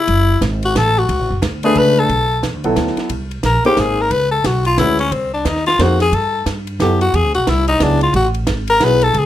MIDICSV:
0, 0, Header, 1, 6, 480
1, 0, Start_track
1, 0, Key_signature, 3, "minor"
1, 0, Tempo, 336134
1, 106, Time_signature, 3, 2, 24, 8
1, 13219, End_track
2, 0, Start_track
2, 0, Title_t, "Tenor saxophone"
2, 0, Program_c, 0, 66
2, 0, Note_on_c, 0, 64, 98
2, 606, Note_off_c, 0, 64, 0
2, 927, Note_on_c, 0, 66, 100
2, 1101, Note_on_c, 0, 69, 113
2, 1123, Note_off_c, 0, 66, 0
2, 1407, Note_on_c, 0, 66, 95
2, 1429, Note_off_c, 0, 69, 0
2, 2047, Note_off_c, 0, 66, 0
2, 2350, Note_on_c, 0, 68, 110
2, 2544, Note_on_c, 0, 71, 113
2, 2565, Note_off_c, 0, 68, 0
2, 2845, Note_on_c, 0, 69, 104
2, 2866, Note_off_c, 0, 71, 0
2, 3486, Note_off_c, 0, 69, 0
2, 4933, Note_on_c, 0, 70, 96
2, 5198, Note_off_c, 0, 70, 0
2, 5223, Note_on_c, 0, 67, 106
2, 5428, Note_on_c, 0, 68, 96
2, 5449, Note_off_c, 0, 67, 0
2, 5730, Note_on_c, 0, 70, 100
2, 5751, Note_off_c, 0, 68, 0
2, 5884, Note_on_c, 0, 71, 112
2, 5905, Note_off_c, 0, 70, 0
2, 6149, Note_off_c, 0, 71, 0
2, 6158, Note_on_c, 0, 69, 92
2, 6371, Note_on_c, 0, 66, 86
2, 6392, Note_off_c, 0, 69, 0
2, 6652, Note_off_c, 0, 66, 0
2, 6660, Note_on_c, 0, 65, 102
2, 6840, Note_on_c, 0, 64, 93
2, 6861, Note_off_c, 0, 65, 0
2, 7131, Note_off_c, 0, 64, 0
2, 7140, Note_on_c, 0, 61, 94
2, 7318, Note_on_c, 0, 60, 89
2, 7340, Note_off_c, 0, 61, 0
2, 7610, Note_off_c, 0, 60, 0
2, 7621, Note_on_c, 0, 62, 81
2, 7814, Note_on_c, 0, 63, 87
2, 7835, Note_off_c, 0, 62, 0
2, 8085, Note_off_c, 0, 63, 0
2, 8094, Note_on_c, 0, 65, 100
2, 8306, Note_on_c, 0, 66, 97
2, 8327, Note_off_c, 0, 65, 0
2, 8578, Note_off_c, 0, 66, 0
2, 8587, Note_on_c, 0, 68, 104
2, 8775, Note_on_c, 0, 69, 93
2, 8796, Note_off_c, 0, 68, 0
2, 9241, Note_off_c, 0, 69, 0
2, 9730, Note_on_c, 0, 67, 91
2, 9996, Note_off_c, 0, 67, 0
2, 10018, Note_on_c, 0, 66, 104
2, 10218, Note_on_c, 0, 68, 103
2, 10239, Note_off_c, 0, 66, 0
2, 10489, Note_off_c, 0, 68, 0
2, 10497, Note_on_c, 0, 66, 90
2, 10694, Note_on_c, 0, 64, 91
2, 10715, Note_off_c, 0, 66, 0
2, 10962, Note_off_c, 0, 64, 0
2, 10970, Note_on_c, 0, 63, 106
2, 11182, Note_on_c, 0, 62, 96
2, 11203, Note_off_c, 0, 63, 0
2, 11462, Note_off_c, 0, 62, 0
2, 11468, Note_on_c, 0, 65, 91
2, 11626, Note_off_c, 0, 65, 0
2, 11651, Note_on_c, 0, 66, 95
2, 11822, Note_off_c, 0, 66, 0
2, 12422, Note_on_c, 0, 70, 119
2, 12634, Note_on_c, 0, 71, 111
2, 12655, Note_off_c, 0, 70, 0
2, 12901, Note_on_c, 0, 69, 108
2, 12923, Note_off_c, 0, 71, 0
2, 13114, Note_on_c, 0, 68, 98
2, 13135, Note_off_c, 0, 69, 0
2, 13219, Note_off_c, 0, 68, 0
2, 13219, End_track
3, 0, Start_track
3, 0, Title_t, "Upright piano"
3, 0, Program_c, 1, 0
3, 2340, Note_on_c, 1, 57, 94
3, 2341, Note_on_c, 1, 62, 84
3, 2354, Note_on_c, 1, 68, 80
3, 2363, Note_on_c, 1, 71, 97
3, 2957, Note_off_c, 1, 57, 0
3, 2957, Note_off_c, 1, 62, 0
3, 2964, Note_off_c, 1, 68, 0
3, 2968, Note_off_c, 1, 71, 0
3, 3775, Note_on_c, 1, 54, 80
3, 3777, Note_on_c, 1, 59, 73
3, 3791, Note_on_c, 1, 64, 70
3, 3794, Note_on_c, 1, 69, 91
3, 4394, Note_off_c, 1, 54, 0
3, 4396, Note_off_c, 1, 59, 0
3, 4402, Note_off_c, 1, 64, 0
3, 4404, Note_off_c, 1, 69, 0
3, 5208, Note_on_c, 1, 58, 78
3, 5211, Note_on_c, 1, 63, 73
3, 5217, Note_on_c, 1, 68, 68
3, 5229, Note_on_c, 1, 72, 85
3, 5831, Note_off_c, 1, 58, 0
3, 5833, Note_off_c, 1, 63, 0
3, 5836, Note_off_c, 1, 68, 0
3, 5842, Note_off_c, 1, 72, 0
3, 6834, Note_on_c, 1, 56, 68
3, 6840, Note_on_c, 1, 61, 57
3, 6852, Note_on_c, 1, 71, 75
3, 6854, Note_on_c, 1, 66, 57
3, 7098, Note_off_c, 1, 56, 0
3, 7102, Note_off_c, 1, 61, 0
3, 7107, Note_off_c, 1, 71, 0
3, 7109, Note_off_c, 1, 66, 0
3, 8275, Note_on_c, 1, 58, 62
3, 8277, Note_on_c, 1, 63, 52
3, 8289, Note_on_c, 1, 68, 54
3, 8296, Note_on_c, 1, 72, 72
3, 8539, Note_off_c, 1, 58, 0
3, 8540, Note_off_c, 1, 63, 0
3, 8546, Note_off_c, 1, 68, 0
3, 8550, Note_off_c, 1, 72, 0
3, 9725, Note_on_c, 1, 54, 63
3, 9733, Note_on_c, 1, 59, 59
3, 9733, Note_on_c, 1, 64, 61
3, 9743, Note_on_c, 1, 69, 67
3, 9984, Note_off_c, 1, 54, 0
3, 9988, Note_off_c, 1, 59, 0
3, 9988, Note_off_c, 1, 64, 0
3, 9993, Note_off_c, 1, 69, 0
3, 11140, Note_on_c, 1, 54, 61
3, 11143, Note_on_c, 1, 59, 56
3, 11158, Note_on_c, 1, 64, 58
3, 11168, Note_on_c, 1, 68, 66
3, 11411, Note_off_c, 1, 54, 0
3, 11412, Note_off_c, 1, 59, 0
3, 11420, Note_off_c, 1, 64, 0
3, 11425, Note_off_c, 1, 68, 0
3, 12587, Note_on_c, 1, 59, 64
3, 12588, Note_on_c, 1, 54, 71
3, 12596, Note_on_c, 1, 64, 64
3, 12605, Note_on_c, 1, 68, 80
3, 12855, Note_off_c, 1, 54, 0
3, 12855, Note_off_c, 1, 59, 0
3, 12859, Note_off_c, 1, 64, 0
3, 12863, Note_off_c, 1, 68, 0
3, 13219, End_track
4, 0, Start_track
4, 0, Title_t, "Upright bass"
4, 0, Program_c, 2, 32
4, 108, Note_on_c, 2, 30, 96
4, 572, Note_off_c, 2, 30, 0
4, 589, Note_on_c, 2, 32, 95
4, 1052, Note_off_c, 2, 32, 0
4, 1077, Note_on_c, 2, 33, 103
4, 1536, Note_off_c, 2, 33, 0
4, 1556, Note_on_c, 2, 37, 94
4, 1698, Note_off_c, 2, 37, 0
4, 1698, Note_on_c, 2, 33, 62
4, 1854, Note_off_c, 2, 33, 0
4, 1862, Note_on_c, 2, 30, 78
4, 2012, Note_off_c, 2, 30, 0
4, 2026, Note_on_c, 2, 38, 104
4, 2491, Note_off_c, 2, 38, 0
4, 2502, Note_on_c, 2, 37, 102
4, 2969, Note_off_c, 2, 37, 0
4, 2985, Note_on_c, 2, 35, 82
4, 3450, Note_off_c, 2, 35, 0
4, 3462, Note_on_c, 2, 40, 89
4, 3622, Note_off_c, 2, 40, 0
4, 3622, Note_on_c, 2, 38, 55
4, 3766, Note_off_c, 2, 38, 0
4, 3774, Note_on_c, 2, 35, 64
4, 3928, Note_off_c, 2, 35, 0
4, 3942, Note_on_c, 2, 38, 95
4, 4221, Note_off_c, 2, 38, 0
4, 4424, Note_on_c, 2, 36, 83
4, 4890, Note_off_c, 2, 36, 0
4, 4898, Note_on_c, 2, 34, 88
4, 5179, Note_off_c, 2, 34, 0
4, 5382, Note_on_c, 2, 32, 89
4, 5849, Note_off_c, 2, 32, 0
4, 5865, Note_on_c, 2, 37, 89
4, 6331, Note_off_c, 2, 37, 0
4, 6346, Note_on_c, 2, 35, 93
4, 6812, Note_off_c, 2, 35, 0
4, 6824, Note_on_c, 2, 38, 97
4, 7291, Note_off_c, 2, 38, 0
4, 7307, Note_on_c, 2, 36, 90
4, 7772, Note_off_c, 2, 36, 0
4, 7779, Note_on_c, 2, 39, 93
4, 8248, Note_off_c, 2, 39, 0
4, 8264, Note_on_c, 2, 41, 87
4, 8731, Note_off_c, 2, 41, 0
4, 8740, Note_on_c, 2, 43, 92
4, 9209, Note_off_c, 2, 43, 0
4, 9225, Note_on_c, 2, 43, 90
4, 9691, Note_off_c, 2, 43, 0
4, 9702, Note_on_c, 2, 42, 95
4, 10170, Note_off_c, 2, 42, 0
4, 10186, Note_on_c, 2, 40, 91
4, 10340, Note_off_c, 2, 40, 0
4, 10340, Note_on_c, 2, 38, 60
4, 10488, Note_off_c, 2, 38, 0
4, 10497, Note_on_c, 2, 35, 70
4, 10650, Note_off_c, 2, 35, 0
4, 10667, Note_on_c, 2, 36, 93
4, 11132, Note_off_c, 2, 36, 0
4, 11141, Note_on_c, 2, 37, 97
4, 11609, Note_off_c, 2, 37, 0
4, 11620, Note_on_c, 2, 33, 98
4, 12088, Note_off_c, 2, 33, 0
4, 12098, Note_on_c, 2, 32, 93
4, 12562, Note_off_c, 2, 32, 0
4, 12570, Note_on_c, 2, 35, 97
4, 13039, Note_off_c, 2, 35, 0
4, 13048, Note_on_c, 2, 37, 98
4, 13219, Note_off_c, 2, 37, 0
4, 13219, End_track
5, 0, Start_track
5, 0, Title_t, "Muted upright bass strokes"
5, 4236, Note_on_c, 9, 29, 42
5, 4379, Note_off_c, 9, 29, 0
5, 5195, Note_on_c, 9, 29, 37
5, 5338, Note_off_c, 9, 29, 0
5, 13219, End_track
6, 0, Start_track
6, 0, Title_t, "Drums"
6, 110, Note_on_c, 9, 51, 76
6, 115, Note_on_c, 9, 36, 21
6, 253, Note_off_c, 9, 51, 0
6, 258, Note_off_c, 9, 36, 0
6, 594, Note_on_c, 9, 38, 82
6, 595, Note_on_c, 9, 36, 20
6, 595, Note_on_c, 9, 44, 68
6, 595, Note_on_c, 9, 51, 74
6, 736, Note_off_c, 9, 38, 0
6, 738, Note_off_c, 9, 36, 0
6, 738, Note_off_c, 9, 44, 0
6, 738, Note_off_c, 9, 51, 0
6, 894, Note_on_c, 9, 51, 53
6, 1036, Note_off_c, 9, 51, 0
6, 1078, Note_on_c, 9, 36, 22
6, 1079, Note_on_c, 9, 38, 76
6, 1080, Note_on_c, 9, 44, 70
6, 1080, Note_on_c, 9, 51, 82
6, 1220, Note_off_c, 9, 36, 0
6, 1222, Note_off_c, 9, 38, 0
6, 1223, Note_off_c, 9, 44, 0
6, 1223, Note_off_c, 9, 51, 0
6, 1556, Note_on_c, 9, 36, 28
6, 1556, Note_on_c, 9, 51, 72
6, 1698, Note_off_c, 9, 36, 0
6, 1698, Note_off_c, 9, 51, 0
6, 2033, Note_on_c, 9, 38, 86
6, 2034, Note_on_c, 9, 36, 21
6, 2034, Note_on_c, 9, 44, 60
6, 2034, Note_on_c, 9, 51, 78
6, 2176, Note_off_c, 9, 38, 0
6, 2177, Note_off_c, 9, 36, 0
6, 2177, Note_off_c, 9, 44, 0
6, 2177, Note_off_c, 9, 51, 0
6, 2328, Note_on_c, 9, 51, 61
6, 2470, Note_off_c, 9, 51, 0
6, 2504, Note_on_c, 9, 51, 65
6, 2510, Note_on_c, 9, 36, 29
6, 2647, Note_off_c, 9, 51, 0
6, 2653, Note_off_c, 9, 36, 0
6, 2989, Note_on_c, 9, 51, 66
6, 2990, Note_on_c, 9, 36, 26
6, 3132, Note_off_c, 9, 51, 0
6, 3133, Note_off_c, 9, 36, 0
6, 3470, Note_on_c, 9, 36, 22
6, 3472, Note_on_c, 9, 38, 77
6, 3473, Note_on_c, 9, 44, 64
6, 3473, Note_on_c, 9, 51, 73
6, 3613, Note_off_c, 9, 36, 0
6, 3615, Note_off_c, 9, 38, 0
6, 3616, Note_off_c, 9, 44, 0
6, 3616, Note_off_c, 9, 51, 0
6, 3768, Note_on_c, 9, 51, 50
6, 3911, Note_off_c, 9, 51, 0
6, 3945, Note_on_c, 9, 38, 72
6, 3947, Note_on_c, 9, 44, 56
6, 3947, Note_on_c, 9, 51, 67
6, 3949, Note_on_c, 9, 36, 24
6, 4088, Note_off_c, 9, 38, 0
6, 4089, Note_off_c, 9, 44, 0
6, 4089, Note_off_c, 9, 51, 0
6, 4092, Note_off_c, 9, 36, 0
6, 4103, Note_on_c, 9, 38, 31
6, 4242, Note_on_c, 9, 51, 51
6, 4246, Note_off_c, 9, 38, 0
6, 4258, Note_on_c, 9, 38, 50
6, 4385, Note_off_c, 9, 51, 0
6, 4400, Note_off_c, 9, 38, 0
6, 4419, Note_on_c, 9, 51, 73
6, 4427, Note_on_c, 9, 36, 25
6, 4562, Note_off_c, 9, 51, 0
6, 4569, Note_off_c, 9, 36, 0
6, 4729, Note_on_c, 9, 51, 48
6, 4871, Note_off_c, 9, 51, 0
6, 4900, Note_on_c, 9, 38, 71
6, 4902, Note_on_c, 9, 44, 65
6, 4902, Note_on_c, 9, 51, 76
6, 4907, Note_on_c, 9, 36, 22
6, 5043, Note_off_c, 9, 38, 0
6, 5045, Note_off_c, 9, 44, 0
6, 5045, Note_off_c, 9, 51, 0
6, 5050, Note_off_c, 9, 36, 0
6, 5206, Note_on_c, 9, 51, 51
6, 5349, Note_off_c, 9, 51, 0
6, 5382, Note_on_c, 9, 38, 73
6, 5384, Note_on_c, 9, 44, 62
6, 5384, Note_on_c, 9, 51, 69
6, 5387, Note_on_c, 9, 36, 24
6, 5525, Note_off_c, 9, 38, 0
6, 5527, Note_off_c, 9, 44, 0
6, 5527, Note_off_c, 9, 51, 0
6, 5530, Note_off_c, 9, 36, 0
6, 5866, Note_on_c, 9, 36, 23
6, 5866, Note_on_c, 9, 51, 70
6, 6008, Note_off_c, 9, 51, 0
6, 6009, Note_off_c, 9, 36, 0
6, 6344, Note_on_c, 9, 38, 73
6, 6346, Note_on_c, 9, 44, 66
6, 6346, Note_on_c, 9, 51, 79
6, 6347, Note_on_c, 9, 36, 18
6, 6487, Note_off_c, 9, 38, 0
6, 6488, Note_off_c, 9, 44, 0
6, 6488, Note_off_c, 9, 51, 0
6, 6490, Note_off_c, 9, 36, 0
6, 6639, Note_on_c, 9, 51, 56
6, 6782, Note_off_c, 9, 51, 0
6, 6822, Note_on_c, 9, 38, 75
6, 6823, Note_on_c, 9, 44, 68
6, 6823, Note_on_c, 9, 51, 79
6, 6825, Note_on_c, 9, 36, 24
6, 6965, Note_off_c, 9, 38, 0
6, 6966, Note_off_c, 9, 44, 0
6, 6966, Note_off_c, 9, 51, 0
6, 6968, Note_off_c, 9, 36, 0
6, 7124, Note_on_c, 9, 51, 53
6, 7267, Note_off_c, 9, 51, 0
6, 7309, Note_on_c, 9, 36, 21
6, 7309, Note_on_c, 9, 51, 74
6, 7452, Note_off_c, 9, 36, 0
6, 7452, Note_off_c, 9, 51, 0
6, 7786, Note_on_c, 9, 38, 81
6, 7788, Note_on_c, 9, 36, 27
6, 7788, Note_on_c, 9, 44, 71
6, 7788, Note_on_c, 9, 51, 76
6, 7929, Note_off_c, 9, 38, 0
6, 7930, Note_off_c, 9, 44, 0
6, 7930, Note_off_c, 9, 51, 0
6, 7931, Note_off_c, 9, 36, 0
6, 7944, Note_on_c, 9, 38, 29
6, 8085, Note_on_c, 9, 51, 51
6, 8087, Note_off_c, 9, 38, 0
6, 8112, Note_on_c, 9, 38, 56
6, 8228, Note_off_c, 9, 51, 0
6, 8255, Note_off_c, 9, 38, 0
6, 8269, Note_on_c, 9, 36, 26
6, 8272, Note_on_c, 9, 38, 76
6, 8273, Note_on_c, 9, 44, 49
6, 8273, Note_on_c, 9, 51, 81
6, 8412, Note_off_c, 9, 36, 0
6, 8415, Note_off_c, 9, 38, 0
6, 8416, Note_off_c, 9, 44, 0
6, 8416, Note_off_c, 9, 51, 0
6, 8567, Note_on_c, 9, 38, 50
6, 8568, Note_on_c, 9, 51, 55
6, 8710, Note_off_c, 9, 38, 0
6, 8711, Note_off_c, 9, 51, 0
6, 8750, Note_on_c, 9, 36, 26
6, 8750, Note_on_c, 9, 51, 76
6, 8893, Note_off_c, 9, 36, 0
6, 8893, Note_off_c, 9, 51, 0
6, 9228, Note_on_c, 9, 38, 73
6, 9229, Note_on_c, 9, 36, 23
6, 9229, Note_on_c, 9, 44, 69
6, 9229, Note_on_c, 9, 51, 73
6, 9370, Note_off_c, 9, 38, 0
6, 9372, Note_off_c, 9, 36, 0
6, 9372, Note_off_c, 9, 44, 0
6, 9372, Note_off_c, 9, 51, 0
6, 9525, Note_on_c, 9, 51, 56
6, 9668, Note_off_c, 9, 51, 0
6, 9710, Note_on_c, 9, 38, 76
6, 9711, Note_on_c, 9, 36, 24
6, 9711, Note_on_c, 9, 44, 55
6, 9711, Note_on_c, 9, 51, 75
6, 9853, Note_off_c, 9, 38, 0
6, 9854, Note_off_c, 9, 36, 0
6, 9854, Note_off_c, 9, 44, 0
6, 9854, Note_off_c, 9, 51, 0
6, 10010, Note_on_c, 9, 51, 59
6, 10153, Note_off_c, 9, 51, 0
6, 10192, Note_on_c, 9, 36, 19
6, 10193, Note_on_c, 9, 51, 78
6, 10335, Note_off_c, 9, 36, 0
6, 10335, Note_off_c, 9, 51, 0
6, 10488, Note_on_c, 9, 51, 55
6, 10630, Note_off_c, 9, 51, 0
6, 10668, Note_on_c, 9, 38, 82
6, 10670, Note_on_c, 9, 44, 57
6, 10670, Note_on_c, 9, 51, 79
6, 10671, Note_on_c, 9, 36, 22
6, 10811, Note_off_c, 9, 38, 0
6, 10813, Note_off_c, 9, 44, 0
6, 10813, Note_off_c, 9, 51, 0
6, 10814, Note_off_c, 9, 36, 0
6, 10962, Note_on_c, 9, 51, 58
6, 11104, Note_off_c, 9, 51, 0
6, 11140, Note_on_c, 9, 38, 76
6, 11141, Note_on_c, 9, 44, 64
6, 11141, Note_on_c, 9, 51, 80
6, 11145, Note_on_c, 9, 36, 19
6, 11283, Note_off_c, 9, 38, 0
6, 11284, Note_off_c, 9, 44, 0
6, 11284, Note_off_c, 9, 51, 0
6, 11288, Note_off_c, 9, 36, 0
6, 11438, Note_on_c, 9, 51, 53
6, 11581, Note_off_c, 9, 51, 0
6, 11620, Note_on_c, 9, 51, 71
6, 11624, Note_on_c, 9, 36, 21
6, 11762, Note_off_c, 9, 51, 0
6, 11767, Note_off_c, 9, 36, 0
6, 11915, Note_on_c, 9, 51, 53
6, 12058, Note_off_c, 9, 51, 0
6, 12092, Note_on_c, 9, 38, 86
6, 12093, Note_on_c, 9, 44, 70
6, 12093, Note_on_c, 9, 51, 84
6, 12100, Note_on_c, 9, 36, 20
6, 12235, Note_off_c, 9, 38, 0
6, 12236, Note_off_c, 9, 44, 0
6, 12236, Note_off_c, 9, 51, 0
6, 12243, Note_off_c, 9, 36, 0
6, 12387, Note_on_c, 9, 51, 61
6, 12530, Note_off_c, 9, 51, 0
6, 12573, Note_on_c, 9, 38, 80
6, 12574, Note_on_c, 9, 44, 64
6, 12574, Note_on_c, 9, 51, 77
6, 12579, Note_on_c, 9, 36, 25
6, 12715, Note_off_c, 9, 38, 0
6, 12717, Note_off_c, 9, 44, 0
6, 12717, Note_off_c, 9, 51, 0
6, 12721, Note_off_c, 9, 36, 0
6, 12873, Note_on_c, 9, 51, 58
6, 13016, Note_off_c, 9, 51, 0
6, 13056, Note_on_c, 9, 51, 75
6, 13058, Note_on_c, 9, 36, 23
6, 13199, Note_off_c, 9, 51, 0
6, 13201, Note_off_c, 9, 36, 0
6, 13219, End_track
0, 0, End_of_file